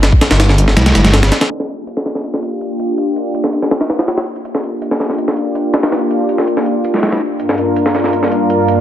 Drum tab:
HH |x-xxx-x-xxxxxxxx|x-x-x-x-x-x-x-x-|x-x-x-x-xxxxxxxx|x-x-x-x-x-x-x-xx|
SD |o-oooo-ooooooooo|-o---ooo-o------|-----o-ooooooo--|-o---ooo-o----oo|
BD |-o--------------|----------------|----------------|----------------|

HH |x-x-x-x-x-x-xx--|x-x-x-x-x-x-x-x-|
SD |o----o-o---ooo--|-o---ooo-o------|
BD |----------------|----------------|